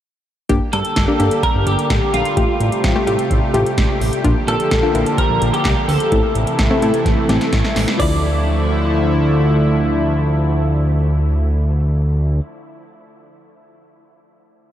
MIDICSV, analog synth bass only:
0, 0, Header, 1, 2, 480
1, 0, Start_track
1, 0, Key_signature, -1, "minor"
1, 0, Tempo, 468750
1, 507, Time_signature, 4, 2, 24, 8
1, 15073, End_track
2, 0, Start_track
2, 0, Title_t, "Analog synth bass"
2, 0, Program_c, 0, 38
2, 507, Note_on_c, 0, 31, 113
2, 607, Note_off_c, 0, 31, 0
2, 748, Note_on_c, 0, 43, 94
2, 848, Note_off_c, 0, 43, 0
2, 990, Note_on_c, 0, 31, 102
2, 1089, Note_off_c, 0, 31, 0
2, 1228, Note_on_c, 0, 31, 95
2, 1327, Note_off_c, 0, 31, 0
2, 1588, Note_on_c, 0, 31, 93
2, 1688, Note_off_c, 0, 31, 0
2, 1708, Note_on_c, 0, 31, 100
2, 1807, Note_off_c, 0, 31, 0
2, 1948, Note_on_c, 0, 33, 95
2, 2048, Note_off_c, 0, 33, 0
2, 2186, Note_on_c, 0, 34, 90
2, 2287, Note_off_c, 0, 34, 0
2, 2429, Note_on_c, 0, 33, 117
2, 2528, Note_off_c, 0, 33, 0
2, 2667, Note_on_c, 0, 33, 105
2, 2767, Note_off_c, 0, 33, 0
2, 2911, Note_on_c, 0, 33, 101
2, 3009, Note_off_c, 0, 33, 0
2, 3147, Note_on_c, 0, 45, 93
2, 3247, Note_off_c, 0, 45, 0
2, 3385, Note_on_c, 0, 33, 109
2, 3486, Note_off_c, 0, 33, 0
2, 3626, Note_on_c, 0, 33, 100
2, 3727, Note_off_c, 0, 33, 0
2, 3868, Note_on_c, 0, 33, 102
2, 3967, Note_off_c, 0, 33, 0
2, 4107, Note_on_c, 0, 33, 94
2, 4207, Note_off_c, 0, 33, 0
2, 4347, Note_on_c, 0, 34, 113
2, 4447, Note_off_c, 0, 34, 0
2, 4585, Note_on_c, 0, 46, 107
2, 4686, Note_off_c, 0, 46, 0
2, 4830, Note_on_c, 0, 34, 105
2, 4929, Note_off_c, 0, 34, 0
2, 5063, Note_on_c, 0, 34, 104
2, 5165, Note_off_c, 0, 34, 0
2, 5424, Note_on_c, 0, 34, 95
2, 5525, Note_off_c, 0, 34, 0
2, 5545, Note_on_c, 0, 34, 101
2, 5646, Note_off_c, 0, 34, 0
2, 5787, Note_on_c, 0, 36, 105
2, 5887, Note_off_c, 0, 36, 0
2, 6024, Note_on_c, 0, 38, 90
2, 6125, Note_off_c, 0, 38, 0
2, 6266, Note_on_c, 0, 33, 112
2, 6366, Note_off_c, 0, 33, 0
2, 6506, Note_on_c, 0, 33, 102
2, 6606, Note_off_c, 0, 33, 0
2, 6749, Note_on_c, 0, 33, 102
2, 6848, Note_off_c, 0, 33, 0
2, 6986, Note_on_c, 0, 45, 97
2, 7086, Note_off_c, 0, 45, 0
2, 7225, Note_on_c, 0, 33, 113
2, 7326, Note_off_c, 0, 33, 0
2, 7466, Note_on_c, 0, 33, 98
2, 7566, Note_off_c, 0, 33, 0
2, 7707, Note_on_c, 0, 33, 104
2, 7807, Note_off_c, 0, 33, 0
2, 7946, Note_on_c, 0, 33, 97
2, 8046, Note_off_c, 0, 33, 0
2, 8187, Note_on_c, 0, 38, 105
2, 12702, Note_off_c, 0, 38, 0
2, 15073, End_track
0, 0, End_of_file